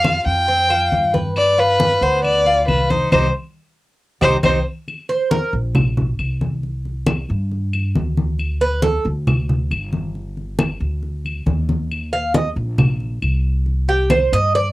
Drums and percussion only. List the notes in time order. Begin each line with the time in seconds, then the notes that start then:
0.04 high conga, claves
0.26 high conga
0.49 high conga
0.70 high conga, claves
0.92 high conga
1.14 high conga
1.36 high conga, claves
1.58 high conga
1.80 high conga
2.02 high conga
2.24 high conga, claves
2.46 high conga
2.68 high conga, claves
2.90 high conga
3.12 high conga, claves
4.22 high conga, claves
4.43 high conga, claves
4.88 high conga, claves
5.09 high conga
5.31 high conga
5.53 high conga
5.75 high conga, low conga, claves
5.97 high conga, low conga
6.19 high conga, claves
6.41 high conga
6.63 high conga
6.85 high conga
7.06 high conga, claves
7.29 high conga
7.52 high conga
7.73 high conga, claves
7.95 high conga
8.17 high conga
8.39 high conga, claves
8.60 high conga
8.82 high conga
9.05 high conga
9.27 high conga, low conga, claves
9.49 high conga, low conga
9.71 high conga, claves
9.93 high conga
10.15 high conga
10.37 high conga
10.59 high conga, claves
10.81 high conga
11.03 high conga
11.25 high conga, claves
11.47 high conga
11.69 high conga
11.91 high conga, claves
12.13 high conga
12.34 high conga
12.57 high conga
12.78 high conga, low conga, claves
13.00 high conga
13.22 high conga, claves
13.66 high conga
13.88 high conga
14.10 high conga, claves
14.33 high conga
14.55 high conga